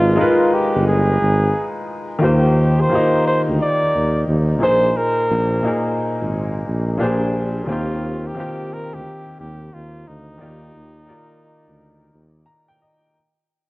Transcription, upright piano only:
Already playing: G#3 D#4 F4 A#4 B4
0.15 G#3 D#4 F4 A#4
0.21 B4
2.19 D#3 A#3 F4 G4
2.24 C5
2.89 D#3 A#3 F4
2.93 D#4 G4
4.59 A#2 A#3 D#4 G#4
4.64 C5
5.62 A#2 A#3 D#4 G#4
5.67 A#4
6.97 A#2 A#3 D4 G4
7.02 G#4 C5
7.66 D#3 A#3 C4
7.70 F4 G4
8.35 D#3 A#3 C4
8.39 F4 G4
10.38 D#3 A#3 D5
10.42 F4 G4
11.06 A#3 D#4 D5
11.10 F4 A#4
12.46 A#5
12.68 G5
12.82 D#5

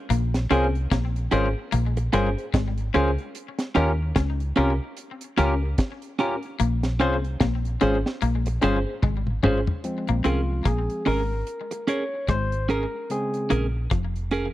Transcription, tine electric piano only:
0.51 C#4 F4 G#4 C5
1.32 C#4 F4 G#4 C5
2.13 C#4 F4 G#4 C5
2.38 G#4 C5
2.94 C#4 F4 G#4 C5
3.75 C#4 F4 G4 A#4
4.57 C#4 F4 G4 A#4
5.38 C#4 F4 G4 A#4
5.62 G4 A#4
6.19 C#4 F4 G4 A#4
7.00 C#4 F4 G#4 C5
7.81 C#4 F4 G#4 C5
8.61 C#4 F4 G#4 C5
8.86 G#4 C5
9.43 C#4 F4 G#4 C5
9.84 F3 G#3 C4
10.25 F4
10.67 G#4
11.07 A#4
11.89 C#5
12.30 C5
12.71 A#4
13.10 C#3 G#3 C4 G#4

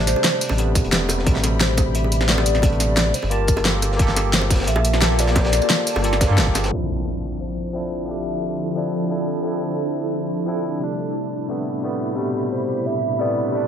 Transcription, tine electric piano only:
Already playing: C3 G3 A3 D4
0.57 C3 G3 A3 B3
0.91 C3 G3 A3 B3
1.24 C3 G3 A3
1.29 B2
2.27 C3 G3 A3 B3
2.60 C3 G3 A3
2.66 D4
3.30 A#3 F4 G4 A5
3.64 A#3 F4 G4 A4
3.97 A#3 F4 G4
4.02 A4
5.00 A#3 F4 G4 A4
5.33 A#3 F4 G4
5.38 C5
6.03 A#3 F4 G4 A4
6.27 A#3 F4 G4
6.32 A4
6.69 F3 C4 D4
6.75 E4
7.73 F3 C4 D4 E4
8.06 F3 C4 D4
8.11 G4
8.75 F3 C4 D4 E4
9.09 F3 C4 D4 E4
9.42 F3 C4 D4
9.47 E4
10.46 F3 C4 D4 E4
10.79 C3 G3 A3
10.84 D4
11.48 C3 G3 A3 B3
11.82 C3 G3 A3 B3
12.15 C3 G3 A3
12.20 B2
13.18 C3 G3 A3 B3
13.51 C3 G3 A3
13.57 D4

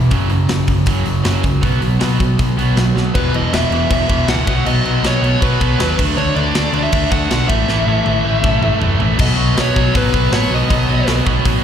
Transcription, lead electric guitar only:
3.15 B4
3.35 D#5
3.54 E5
3.91 E5
4.29 F#5
4.66 D#5
5.06 C#5
5.43 B4
6.17 C#5
6.35 D5
6.83 E5
7.11 F#5
7.48 E5
9.21 D#5
9.60 C#5
9.97 B4
10.33 C#5
10.54 D#5

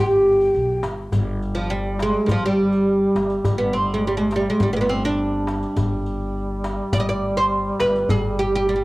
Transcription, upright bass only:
Already playing: G1
0.54 B1
0.83 G1
1.12 G1
2.28 G1
3.15 G1
3.44 G1
4.60 G1
5.76 G1
6.93 G1
7.81 G1
8.09 G1

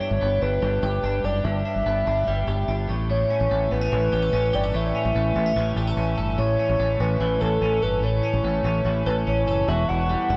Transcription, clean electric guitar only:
Already playing: G2 G3 G4
0.01 D4
0.21 B3
0.42 D4
0.62 G3
0.83 G4
1.04 D4
1.25 G4
1.45 G2
1.65 D4
1.86 B3
2.07 D4
2.28 G3
2.48 G4
2.68 D4
2.89 A2
3.10 A2
3.30 C#4
3.51 A3
3.71 B3
3.81 C#4
3.92 E3
4.13 G4
4.22 A4
4.33 C#4
4.53 G4
4.64 A4
4.74 A2
4.95 C#4
5.15 A3
5.36 B3
5.46 C#4
5.57 E3
5.77 G4
5.87 A4
5.97 C#4
6.18 A4
6.38 A2
6.59 C#4
6.80 A3
7.00 C#4
7.21 E3
7.41 A4
7.62 C#4
7.83 A4
8.03 A2
8.23 C#4
8.44 A3
8.65 C#4
8.86 E3
9.06 A4
9.27 C#4
9.48 A4
9.68 E2 F#4
9.89 E4
10.09 G3
10.30 E4

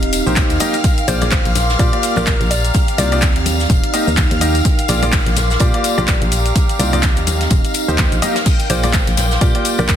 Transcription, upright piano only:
0.26 A#3 D#4 G4 C5
0.37 D#4
0.60 A#3 D#4 G4 D#5
1.08 A#3 F4 G#4 D5
1.22 A#3 F4 G#4 D5
1.79 A#3 F4 G4 D5
1.93 A#3 F4 G4 D5
2.17 A#3 F4 G4 D5
2.98 A#3 D#4 F4 D5
3.12 A#3 D#4 F4 D5
3.94 A#3 D#4 G4 D#5
4.41 A#3 D#4 G4 D#5
4.89 A#3 F4 G#4 D5
5.02 A#3 F4 G#4 D5
5.60 A#3 F4 G4 D5
5.74 A#3 F4 G4 D5
5.98 A#3 F4 G4 D5
6.79 A#3 D#4 F4 D5
6.93 A#3 D#4 F4 D5
7.88 A#3 D#4 G4 C5
7.98 A#3 G4
8.22 A#3 D#4 G4 D#5
8.70 A#3 F4 G#4 D5
8.84 A#3 F4 G#4 D5
9.41 A#3 F4 G4 D5
9.55 A#3 F4 G4 D5
9.79 A#3 F4 G4 D5

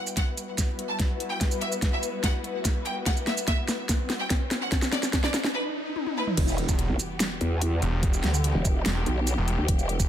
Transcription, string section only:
Already playing: G3 B3 E4 F#4 B4
6.37 E3 G3 B3 F#4 G4

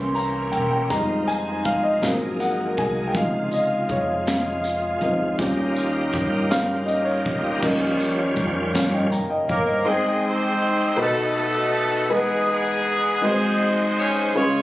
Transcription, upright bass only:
Already playing: C2
0.53 E1
0.90 F2
1.65 G#2
2.02 G#1
2.78 C2
3.15 C#2
3.90 F2
5.02 D2
5.39 D#2
6.13 G2
7.26 D2
7.63 D#2
8.37 F2
8.74 G2
9.11 F#1
9.50 G1

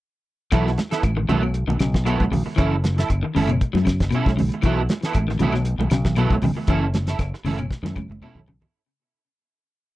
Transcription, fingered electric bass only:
0.52 B1
1.03 A1
1.29 B1
1.67 B1
1.80 B1
2.20 B1
2.31 B1
2.58 F#1
3.09 F#1
3.36 F#1
3.74 F#2
4.00 F#1
4.26 B1
4.64 B1
5.15 A1
5.40 B1
5.79 B1
5.91 B1
6.30 B1
6.42 B1
6.68 F#1
7.19 F#1
7.44 F#1
7.83 F#2
8.08 F#1
8.35 B1

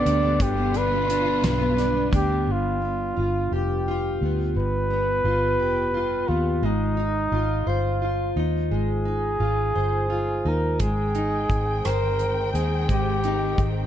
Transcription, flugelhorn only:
Already playing: D5
0.42 G4
0.77 B4
1.45 B4
2.15 G4
2.52 F4
3.55 G4
4.58 B4
6.29 F4
6.65 D#4
7.68 F4
8.72 G#4
10.48 A#4
10.80 G#4
11.86 A#4
12.53 G#4
12.90 G4

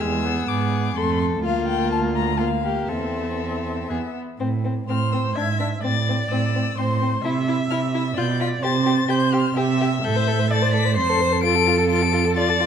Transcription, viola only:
0.01 G#3
0.25 B3
0.97 A3
1.44 A#3
2.39 A#3
2.89 C4
3.90 B3
4.89 C5
5.36 E5
5.83 D5
6.78 C5
7.24 E5
8.17 D5
8.63 C5
9.09 C5
9.57 E5
10.04 E5
10.51 D5
10.97 C5
11.44 A4
12.38 D5

